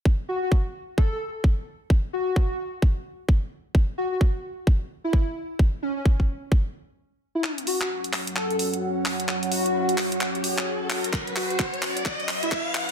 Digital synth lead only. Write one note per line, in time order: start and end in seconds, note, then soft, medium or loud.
0.29 0.38 F#4 medium
0.43 0.48 F#4 medium
0.98 1.07 A4 medium
1.12 1.18 A4 medium
2.13 2.59 F#4 medium
3.98 4.07 F#4 medium
4.12 4.18 F#4 medium
5.04 5.23 E4 medium
5.82 5.92 C#4 medium
5.97 6.02 C#4 medium
7.35 7.44 E4 medium
7.67 7.76 F#4 medium
7.81 7.87 F#4 medium
8.36 8.45 A4 medium
8.50 8.56 A4 medium
9.52 9.98 F#4 medium
11.36 11.45 F#4 medium
11.51 11.56 F#4 medium
12.43 12.61 E4 medium